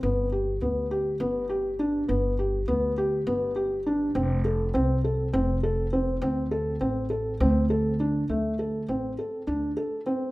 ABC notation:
X:1
M:7/8
L:1/8
Q:1/4=102
K:Ddor
V:1 name="Felt piano"
B, G B, G B, G D | B, G B, G B, G D | C A C A C A C | C A C A C A D |
A, A C A D A C |]
V:2 name="Upright bass" clef=bass
G,,,2 D,,2 G,,,3 | G,,,2 D,,2 G,,,3 | F,,,2 C,,2 F,,,3 | D,,2 A,,,2 D,,3 |
D,,2 A,,, z D,, z2 |]